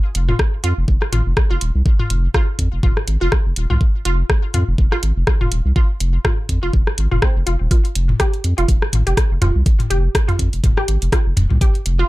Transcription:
0.15 0.33 F1 loud
0.15 closed hi-hat medium
0.29 0.33 F4 medium
0.29 high tom soft
0.39 kick loud
0.39 cross-stick medium
0.64 0.73 F2 medium
0.64 0.67 F4 loud
0.64 closed hi-hat medium
0.77 0.85 F1 medium
0.88 0.98 F1 medium
0.88 kick loud
1.02 cross-stick medium
1.12 1.22 G#1 medium
1.12 1.18 F4 medium
1.12 closed hi-hat medium
1.12 high tom soft
1.26 1.34 F1 medium
1.37 kick loud
1.37 cross-stick medium
1.51 1.58 F1 medium
1.51 1.53 F4 loud
1.61 1.71 D#1 medium
1.61 closed hi-hat medium
1.75 1.82 C2 medium
1.86 kick loud
1.99 2.04 F4 medium
1.99 high tom soft
2.10 2.28 F1 loud
2.10 closed hi-hat medium
2.34 2.38 F4 loud
2.34 kick loud
2.34 cross-stick medium
2.59 2.68 F2 medium
2.59 kick medium
2.59 closed hi-hat medium
2.72 2.80 F1 medium
2.83 2.93 F1 medium
2.83 2.89 F4 medium
2.83 kick loud
2.83 high tom soft
2.97 cross-stick medium
3.07 3.17 G#1 medium
3.07 closed hi-hat medium
3.21 3.29 F1 medium
3.21 3.24 F4 loud
3.32 kick loud
3.32 cross-stick medium
3.46 3.53 F1 medium
3.56 3.66 D#1 medium
3.56 closed hi-hat medium
3.70 3.78 C2 medium
3.70 3.75 F4 medium
3.70 high tom soft
3.81 kick loud
4.05 4.23 F1 loud
4.05 4.09 F4 loud
4.05 closed hi-hat medium
4.30 kick loud
4.30 cross-stick medium
4.54 4.64 F2 medium
4.54 4.60 F4 medium
4.54 closed hi-hat medium
4.54 high tom soft
4.68 4.75 F1 medium
4.78 4.88 F1 medium
4.78 kick loud
4.92 4.95 F4 loud
4.92 cross-stick medium
5.03 5.12 G#1 medium
5.03 closed hi-hat medium
5.16 5.24 F1 medium
5.27 kick loud
5.27 cross-stick medium
5.41 5.48 F1 medium
5.41 5.45 F4 medium
5.41 high tom soft
5.51 5.61 D#1 medium
5.51 closed hi-hat medium
5.65 5.73 C2 medium
5.76 5.79 F4 loud
5.76 kick loud
6.00 6.18 F1 loud
6.00 closed hi-hat medium
6.25 6.31 F4 medium
6.25 kick loud
6.25 cross-stick medium
6.25 high tom soft
6.49 6.59 F2 medium
6.49 kick medium
6.49 closed hi-hat medium
6.63 6.70 F1 medium
6.63 6.66 F4 loud
6.73 6.83 F1 medium
6.73 kick loud
6.87 cross-stick medium
6.98 7.07 G#1 medium
6.98 closed hi-hat medium
7.11 7.19 F1 medium
7.11 7.16 F4 medium
7.11 high tom soft
7.22 7.26 C4 medium
7.22 kick loud
7.22 cross-stick medium
7.36 7.43 F1 loud
7.46 7.56 F1 loud
7.46 7.56 F4 medium
7.46 closed hi-hat medium
7.60 7.68 D#1 loud
7.71 7.75 F4 loud
7.71 kick loud
7.71 closed hi-hat medium
7.85 closed hi-hat soft
7.95 8.13 F1 loud
7.95 closed hi-hat medium
8.09 high tom soft
8.20 8.29 G4 loud
8.20 kick loud
8.20 cross-stick medium
8.20 closed hi-hat medium
8.33 closed hi-hat soft
8.44 8.54 F2 medium
8.44 closed hi-hat medium
8.58 8.65 F1 medium
8.58 8.61 F4 loud
8.58 closed hi-hat soft
8.68 8.78 F1 medium
8.68 kick loud
8.68 closed hi-hat medium
8.82 cross-stick medium
8.93 9.03 G#1 medium
8.93 closed hi-hat medium
8.93 high tom soft
9.07 9.14 F1 medium
9.07 9.14 G4 loud
9.07 closed hi-hat soft
9.17 kick loud
9.17 cross-stick medium
9.17 closed hi-hat medium
9.31 9.39 F1 medium
9.42 9.51 D#1 medium
9.42 9.45 F4 loud
9.42 closed hi-hat medium
9.42 mid tom medium
9.55 9.63 C2 medium
9.66 kick loud
9.66 closed hi-hat medium
9.80 closed hi-hat soft
9.80 high tom soft
9.90 10.09 F1 loud
9.90 9.99 G4 loud
9.90 closed hi-hat medium
10.15 kick loud
10.15 cross-stick loud
10.15 closed hi-hat medium
10.28 10.31 F4 loud
10.28 closed hi-hat soft
10.28 mid tom medium
10.39 10.49 F2 medium
10.39 kick medium
10.39 closed hi-hat medium
10.53 10.60 F1 medium
10.53 closed hi-hat soft
10.64 10.73 F1 medium
10.64 kick loud
10.64 closed hi-hat medium
10.64 high tom soft
10.77 10.84 G4 loud
10.77 cross-stick medium
10.88 10.98 G#1 medium
10.88 closed hi-hat medium
11.02 11.09 F1 medium
11.02 closed hi-hat soft
11.12 11.16 F4 loud
11.12 kick loud
11.12 cross-stick medium
11.12 closed hi-hat medium
11.26 11.34 F1 loud
11.37 11.47 D#1 medium
11.37 closed hi-hat medium
11.37 mid tom medium
11.51 11.58 C2 medium
11.51 high tom soft
11.61 11.70 G4 loud
11.61 kick loud
11.61 closed hi-hat medium
11.75 closed hi-hat soft
11.86 12.04 F1 loud
11.86 closed hi-hat medium
11.99 12.02 F4 loud

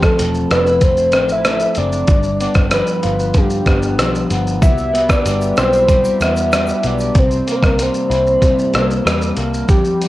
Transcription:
0.00 2.11 F3 medium
0.00 1.13 C4 medium
0.00 0.51 E4 medium
0.00 0.52 A4 loud
0.00 kick medium
0.00 cross-stick medium
0.00 shaker soft
0.19 0.45 E1 medium
0.19 0.81 A3 medium
0.19 closed hi-hat medium
0.19 shaker medium
0.35 shaker medium
0.51 1.14 F1 loud
0.51 0.66 D4 medium
0.51 0.84 B4 loud
0.51 cross-stick medium
0.51 closed hi-hat soft
0.51 shaker soft
0.66 2.15 E4 soft
0.66 shaker soft
0.81 1.44 A3 medium
0.81 1.30 C5 loud
0.81 kick medium
0.81 closed hi-hat medium
0.81 shaker medium
0.97 shaker medium
1.12 1.65 A1 medium
1.12 1.76 C4 medium
1.12 cross-stick medium
1.12 closed hi-hat soft
1.12 shaker soft
1.29 1.79 E5 loud
1.29 shaker medium
1.45 2.15 A3 medium
1.45 cross-stick medium
1.45 closed hi-hat medium
1.45 shaker medium
1.60 shaker medium
1.75 2.03 F#1 medium
1.75 2.15 C4 medium
1.75 2.40 D5 loud
1.75 closed hi-hat soft
1.75 shaker medium
1.93 shaker soft
2.07 2.46 G1 medium
2.07 4.62 G2 medium
2.07 kick loud
2.07 closed hi-hat medium
2.07 shaker medium
2.23 shaker soft
2.40 3.66 B3 medium
2.40 2.55 D5 medium
2.40 closed hi-hat medium
2.40 shaker medium
2.54 2.81 G1 medium
2.54 kick medium
2.54 cross-stick medium
2.54 shaker soft
2.71 3.97 F3 medium
2.71 3.39 B4 loud
2.71 cross-stick medium
2.71 closed hi-hat medium
2.71 shaker medium
2.87 shaker medium
3.03 3.36 G1 loud
3.03 4.68 F4 medium
3.03 closed hi-hat soft
3.03 shaker soft
3.19 shaker soft
3.34 3.60 G2 loud
3.34 4.62 D3 medium
3.34 4.31 G4 medium
3.34 kick medium
3.34 closed hi-hat medium
3.34 shaker medium
3.50 shaker soft
3.66 3.99 G1 medium
3.66 4.30 B3 medium
3.66 kick medium
3.66 cross-stick medium
3.66 closed hi-hat soft
3.66 shaker soft
3.83 shaker medium
3.98 4.24 B1 loud
3.98 4.68 F3 medium
3.98 cross-stick medium
3.98 closed hi-hat medium
3.98 shaker medium
4.15 shaker medium
4.30 4.62 G1 medium
4.30 4.93 B3 medium
4.30 closed hi-hat medium
4.30 shaker medium
4.47 shaker soft
4.61 5.13 C2 loud
4.61 7.13 B2 medium
4.61 7.13 G3 medium
4.61 7.12 E4 medium
4.61 7.12 G4 medium
4.61 5.13 E5 loud
4.61 kick loud
4.61 closed hi-hat medium
4.61 shaker medium
4.78 shaker soft
4.94 6.19 B3 medium
4.94 closed hi-hat medium
4.94 shaker medium
5.09 5.58 D5 loud
5.09 kick medium
5.09 cross-stick medium
5.09 shaker soft
5.25 5.51 G1 loud
5.25 5.88 G3 medium
5.25 closed hi-hat medium
5.25 shaker medium
5.41 shaker soft
5.41 shaker medium
5.56 6.08 B1 medium
5.56 7.50 E4 medium
5.56 6.24 C5 loud
5.56 cross-stick medium
5.56 closed hi-hat soft
5.56 shaker soft
5.73 shaker soft
5.88 6.51 G3 medium
5.88 kick medium
5.88 closed hi-hat medium
5.88 shaker medium
6.04 shaker medium
6.20 6.71 E2 medium
6.20 6.82 B3 medium
6.20 6.88 E5 medium
6.20 cross-stick medium
6.20 closed hi-hat soft
6.20 shaker soft
6.36 shaker soft
6.36 shaker medium
6.51 7.78 G3 medium
6.51 cross-stick medium
6.51 closed hi-hat medium
6.51 shaker medium
6.67 shaker medium
6.69 shaker medium
6.83 7.09 B1 medium
6.83 7.21 B3 medium
6.83 7.20 D5 loud
6.83 closed hi-hat medium
6.83 shaker medium
6.98 shaker soft
7.00 shaker medium
7.15 7.40 C2 medium
7.15 9.68 C3 medium
7.15 7.53 C5 loud
7.15 kick loud
7.15 closed hi-hat medium
7.15 shaker medium
7.31 shaker soft
7.47 8.73 A#3 medium
7.47 closed hi-hat medium
7.47 shaker medium
7.51 7.57 A#4 medium
7.51 7.67 C5 medium
7.63 7.88 C2 medium
7.63 7.84 A#4 medium
7.63 kick medium
7.63 cross-stick medium
7.63 shaker medium
7.79 8.40 G3 medium
7.79 9.38 C5 loud
7.79 closed hi-hat medium
7.79 shaker medium
7.94 shaker medium
8.10 8.35 C2 loud
8.10 10.08 E4 medium
8.10 closed hi-hat soft
8.10 shaker soft
8.27 shaker soft
8.41 8.75 C3 loud
8.41 9.04 G3 medium
8.41 kick medium
8.41 closed hi-hat medium
8.41 shaker medium
8.59 shaker medium
8.74 8.99 C2 medium
8.74 9.36 A#3 medium
8.74 cross-stick medium
8.74 closed hi-hat soft
8.74 shaker soft
8.91 shaker medium
9.05 9.31 E2 loud
9.05 9.75 G3 medium
9.05 cross-stick loud
9.05 closed hi-hat medium
9.05 shaker medium
9.22 shaker medium
9.37 9.62 C2 medium
9.37 9.75 A#3 medium
9.37 closed hi-hat soft
9.37 shaker soft
9.54 shaker medium
9.69 10.08 F2 medium
9.69 10.08 G4 loud
9.69 kick loud
9.69 closed hi-hat medium
9.69 shaker medium
9.85 shaker soft
10.01 10.08 G3 medium
10.01 closed hi-hat medium
10.01 shaker medium

